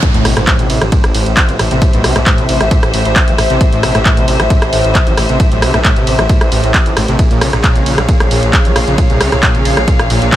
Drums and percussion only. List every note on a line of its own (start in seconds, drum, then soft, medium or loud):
0.03 kick loud
0.03 closed hi-hat loud
0.03 ride medium
0.14 closed hi-hat medium
0.25 cross-stick medium
0.25 open hi-hat loud
0.25 ride medium
0.37 cross-stick medium
0.37 closed hi-hat medium
0.47 kick loud
0.47 clap loud
0.47 closed hi-hat loud
0.47 ride medium
0.59 closed hi-hat medium
0.70 open hi-hat loud
0.70 ride medium
0.81 cross-stick medium
0.81 closed hi-hat medium
0.92 kick loud
0.92 closed hi-hat loud
0.92 ride medium
1.04 cross-stick medium
1.04 closed hi-hat medium
1.14 open hi-hat loud
1.14 ride medium
1.26 closed hi-hat medium
1.37 kick loud
1.37 clap loud
1.37 closed hi-hat loud
1.37 ride medium
1.49 closed hi-hat medium
1.59 cross-stick medium
1.59 open hi-hat loud
1.59 ride medium
1.71 closed hi-hat medium
1.82 kick loud
1.82 closed hi-hat loud
1.82 ride medium
1.93 closed hi-hat medium
2.04 cross-stick medium
2.04 open hi-hat loud
2.04 ride medium
2.16 cross-stick medium
2.16 closed hi-hat medium
2.26 kick loud
2.26 clap loud
2.26 closed hi-hat loud
2.26 ride medium
2.38 closed hi-hat medium
2.49 open hi-hat loud
2.49 ride medium
2.61 cross-stick medium
2.61 closed hi-hat medium
2.71 kick loud
2.71 closed hi-hat loud
2.71 ride medium
2.83 cross-stick medium
2.83 closed hi-hat medium
2.94 open hi-hat loud
2.94 ride medium
3.05 closed hi-hat medium
3.16 kick loud
3.16 clap loud
3.16 closed hi-hat loud
3.16 ride medium
3.28 closed hi-hat medium
3.38 cross-stick medium
3.38 open hi-hat loud
3.38 ride medium
3.50 closed hi-hat medium
3.61 kick loud
3.61 closed hi-hat loud
3.61 ride medium
3.73 closed hi-hat medium
3.83 cross-stick medium
3.83 open hi-hat loud
3.83 ride medium
3.95 cross-stick medium
3.95 closed hi-hat medium
4.06 kick loud
4.06 clap loud
4.06 closed hi-hat loud
4.06 ride medium
4.17 closed hi-hat medium
4.28 open hi-hat loud
4.28 ride medium
4.40 cross-stick medium
4.40 closed hi-hat medium
4.50 kick loud
4.50 closed hi-hat loud
4.50 ride medium
4.62 cross-stick medium
4.62 closed hi-hat medium
4.73 open hi-hat loud
4.73 ride medium
4.84 closed hi-hat medium
4.95 kick loud
4.95 clap loud
4.95 closed hi-hat loud
4.95 ride medium
5.07 closed hi-hat medium
5.17 cross-stick medium
5.17 open hi-hat loud
5.17 ride medium
5.29 closed hi-hat medium
5.40 kick loud
5.40 closed hi-hat medium
5.40 ride medium
5.52 closed hi-hat medium
5.62 cross-stick loud
5.62 open hi-hat loud
5.62 ride medium
5.74 cross-stick medium
5.74 closed hi-hat medium
5.85 kick loud
5.85 clap loud
5.85 closed hi-hat loud
5.85 ride medium
5.96 closed hi-hat medium
6.07 open hi-hat loud
6.07 ride medium
6.19 cross-stick loud
6.19 closed hi-hat medium
6.29 kick loud
6.29 closed hi-hat medium
6.29 ride medium
6.41 cross-stick medium
6.41 closed hi-hat medium
6.52 open hi-hat loud
6.52 ride medium
6.64 closed hi-hat medium
6.74 kick loud
6.74 clap loud
6.74 closed hi-hat medium
6.74 ride medium
6.86 closed hi-hat medium
6.97 cross-stick loud
6.97 open hi-hat loud
6.97 ride medium
7.08 closed hi-hat medium
7.19 kick loud
7.19 closed hi-hat medium
7.19 ride medium
7.31 closed hi-hat soft
7.41 cross-stick loud
7.41 open hi-hat loud
7.41 ride medium
7.53 cross-stick medium
7.53 closed hi-hat medium
7.64 kick loud
7.64 clap loud
7.64 closed hi-hat medium
7.64 ride medium
7.76 closed hi-hat soft
7.86 open hi-hat loud
7.86 ride medium
7.98 cross-stick loud
7.98 closed hi-hat medium
8.09 kick loud
8.09 closed hi-hat medium
8.09 ride medium
8.20 cross-stick loud
8.20 closed hi-hat medium
8.31 open hi-hat loud
8.31 ride medium
8.43 closed hi-hat medium
8.53 kick loud
8.53 clap loud
8.53 closed hi-hat medium
8.53 ride medium
8.65 closed hi-hat medium
8.76 cross-stick loud
8.76 open hi-hat loud
8.76 ride medium
8.87 closed hi-hat medium
8.98 kick loud
8.98 closed hi-hat medium
8.98 ride medium
9.10 closed hi-hat medium
9.21 cross-stick loud
9.21 open hi-hat loud
9.21 ride medium
9.32 cross-stick medium
9.32 closed hi-hat medium
9.43 kick loud
9.43 clap loud
9.43 closed hi-hat medium
9.43 ride medium
9.55 closed hi-hat soft
9.65 open hi-hat loud
9.65 ride medium
9.77 cross-stick loud
9.77 closed hi-hat medium
9.88 kick loud
9.88 closed hi-hat medium
9.88 ride medium
9.99 cross-stick loud
9.99 closed hi-hat medium
10.10 open hi-hat loud
10.10 ride medium
10.22 closed hi-hat medium
10.32 kick loud
10.32 clap loud
10.32 closed hi-hat medium
10.32 ride medium